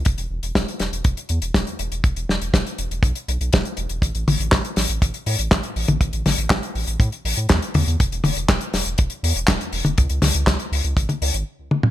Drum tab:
HH |xx-xxxxxxxxxxxxx|xx-xxxxxxxxxxxxx|xxoxxxoxxxoxxxox|xxoxxxoxxxoxxxox|
CP |----------------|----------------|----x-------x---|----x-------x---|
SD |----o-o-----o---|--o-o-------o---|----o-o-----o---|--o-o-------o---|
T1 |----------------|----------------|--o------------o|--o-----------o-|
T2 |----------------|----------------|----------------|----------------|
BD |o---o---o---o---|o---o---o---o---|o---o---o---o---|o---o---o---o---|

HH |xxoxxxoxxxoxxxox|xxoxxxoxxxox----|
CP |----x-------x---|----x-----------|
SD |----o-o-----o---|--o-o-----------|
T1 |--o------------o|--o------o----o-|
T2 |----------------|---------------o|
BD |o---o---o---o---|o---o---o-------|